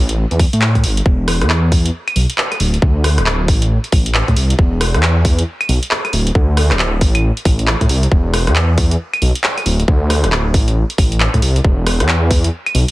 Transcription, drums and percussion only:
0.09 closed hi-hat medium
0.31 closed hi-hat soft
0.40 kick loud
0.40 open hi-hat loud
0.53 closed hi-hat medium
0.62 clap loud
0.75 kick medium
0.75 cross-stick soft
0.75 closed hi-hat medium
0.84 open hi-hat loud
0.97 closed hi-hat medium
1.06 kick loud
1.28 cross-stick medium
1.28 open hi-hat loud
1.41 cross-stick medium
1.41 closed hi-hat medium
1.50 clap loud
1.72 kick loud
1.72 open hi-hat loud
1.86 closed hi-hat medium
2.08 closed hi-hat soft
2.08 claves medium
2.16 open hi-hat loud
2.30 closed hi-hat medium
2.38 clap loud
2.52 cross-stick soft
2.52 closed hi-hat medium
2.52 claves medium
2.60 open hi-hat loud
2.74 closed hi-hat medium
2.82 kick loud
3.04 cross-stick medium
3.04 open hi-hat loud
3.18 cross-stick medium
3.18 closed hi-hat medium
3.26 clap loud
3.48 kick loud
3.48 open hi-hat loud
3.62 closed hi-hat medium
3.84 closed hi-hat soft
3.92 kick loud
3.92 open hi-hat loud
4.06 closed hi-hat medium
4.14 clap loud
4.28 kick medium
4.28 cross-stick soft
4.28 closed hi-hat soft
4.37 open hi-hat loud
4.50 closed hi-hat medium
4.59 kick loud
4.81 cross-stick medium
4.81 open hi-hat loud
4.94 cross-stick medium
4.94 closed hi-hat medium
5.03 clap loud
5.25 kick loud
5.25 open hi-hat loud
5.39 closed hi-hat medium
5.61 closed hi-hat soft
5.61 claves medium
5.69 open hi-hat loud
5.83 closed hi-hat medium
5.91 clap loud
6.05 cross-stick soft
6.05 closed hi-hat soft
6.05 claves medium
6.13 open hi-hat loud
6.27 closed hi-hat medium
6.35 kick loud
6.57 cross-stick medium
6.57 open hi-hat loud
6.71 cross-stick medium
6.71 clap medium
6.71 closed hi-hat medium
6.79 clap loud
7.01 kick loud
7.01 open hi-hat loud
7.15 closed hi-hat medium
7.15 claves medium
7.37 closed hi-hat soft
7.45 kick loud
7.45 open hi-hat loud
7.59 closed hi-hat medium
7.67 clap loud
7.81 kick medium
7.81 cross-stick soft
7.81 closed hi-hat medium
7.89 open hi-hat loud
8.03 closed hi-hat medium
8.12 kick loud
8.34 cross-stick medium
8.34 open hi-hat loud
8.47 cross-stick medium
8.47 closed hi-hat medium
8.56 clap loud
8.78 kick loud
8.78 open hi-hat loud
8.91 closed hi-hat medium
9.14 closed hi-hat soft
9.14 claves medium
9.22 open hi-hat loud
9.35 closed hi-hat medium
9.44 clap loud
9.58 cross-stick soft
9.58 closed hi-hat medium
9.58 claves medium
9.66 open hi-hat loud
9.80 closed hi-hat medium
9.88 kick loud
10.10 cross-stick medium
10.10 open hi-hat loud
10.24 cross-stick medium
10.24 closed hi-hat medium
10.32 clap loud
10.54 kick loud
10.54 open hi-hat loud
10.68 closed hi-hat medium
10.90 closed hi-hat soft
10.98 kick loud
10.98 open hi-hat loud
11.12 closed hi-hat medium
11.20 clap loud
11.34 kick medium
11.34 cross-stick soft
11.34 closed hi-hat medium
11.42 open hi-hat loud
11.56 closed hi-hat medium
11.64 kick loud
11.87 cross-stick medium
11.87 open hi-hat loud
12.00 cross-stick medium
12.00 closed hi-hat medium
12.09 clap loud
12.31 kick medium
12.31 open hi-hat loud
12.44 closed hi-hat medium
12.66 closed hi-hat soft
12.66 claves medium
12.75 open hi-hat loud

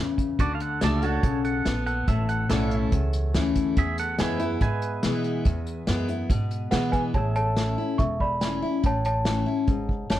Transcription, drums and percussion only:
0.18 kick medium
0.18 closed hi-hat medium
0.39 kick loud
0.39 closed hi-hat medium
0.60 closed hi-hat medium
0.81 snare loud
0.81 closed hi-hat medium
1.02 closed hi-hat medium
1.23 kick loud
1.23 closed hi-hat medium
1.45 closed hi-hat medium
1.66 snare loud
1.66 closed hi-hat medium
1.87 closed hi-hat medium
2.08 kick loud
2.08 closed hi-hat medium
2.29 closed hi-hat medium
2.50 snare loud
2.50 closed hi-hat medium
2.71 closed hi-hat medium
2.92 kick loud
2.92 closed hi-hat medium
3.13 closed hi-hat medium
3.34 snare loud
3.34 closed hi-hat medium
3.55 kick medium
3.55 closed hi-hat medium
3.76 kick loud
3.76 closed hi-hat medium
3.98 closed hi-hat medium
4.18 snare loud
4.18 closed hi-hat medium
4.39 closed hi-hat medium
4.61 kick loud
4.61 closed hi-hat medium
4.82 closed hi-hat medium
5.03 snare loud
5.03 closed hi-hat medium
5.24 closed hi-hat medium
5.45 kick loud
5.45 closed hi-hat medium
5.67 closed hi-hat medium
5.87 snare loud
5.87 closed hi-hat medium
6.08 closed hi-hat medium
6.30 kick loud
6.30 closed hi-hat medium
6.51 closed hi-hat medium
6.72 snare loud
6.72 closed hi-hat medium
6.93 kick medium
6.93 closed hi-hat medium
7.14 kick loud
7.14 closed hi-hat medium
7.35 closed hi-hat medium
7.56 snare loud
7.56 closed hi-hat medium
7.99 kick loud
7.99 closed hi-hat medium
8.20 kick medium
8.41 snare loud
8.41 closed hi-hat medium
8.84 kick loud
8.84 closed hi-hat medium
9.05 closed hi-hat medium
9.25 snare loud
9.25 closed hi-hat medium
9.68 kick loud
9.68 closed hi-hat medium
9.89 kick medium
10.10 snare loud
10.10 closed hi-hat medium

